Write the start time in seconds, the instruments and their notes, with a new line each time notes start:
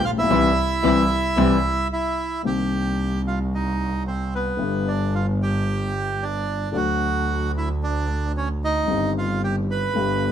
0.03 double bass A#1, bandoneon F4 F5
0.10 grand piano A1
0.18 grand piano A#1, bandoneon E4 E5
0.23 grand piano B1
0.29 double bass C2, grand piano C3 E3 G3, string section G3 C4 E4
0.82 double bass C2, grand piano C3 E3 G3, string section G3 C4 E4
1.37 double bass C2, grand piano C3 E3 G3, string section G3 C4 E4
1.93 bandoneon E4
2.43 grand piano C2 C3 D#3 A#3 C4, double bass C2, bandoneon G4
2.47 grand piano G4
3.27 bandoneon F4
3.55 bandoneon D#4
4.07 bandoneon C4
4.35 bandoneon B3
4.57 double bass G1, grand piano G1 G2 D3 G3 B3
4.61 grand piano G4
4.88 bandoneon D4
5.15 bandoneon F4
5.42 bandoneon G4
6.23 bandoneon D4
6.72 grand piano D2 D3 F#3 A3, double bass D2
6.76 grand piano F#4, bandoneon F#4
7.57 bandoneon E4
7.83 bandoneon D4
8.37 bandoneon C#4
8.64 bandoneon D#4
8.86 grand piano G1 G2 D#3 G3 C4 G4, double bass G1
9.18 bandoneon F4
9.44 bandoneon G4
9.71 bandoneon B4
9.94 grand piano G1 G2 D3 G3 B3, double bass G1
9.98 grand piano G4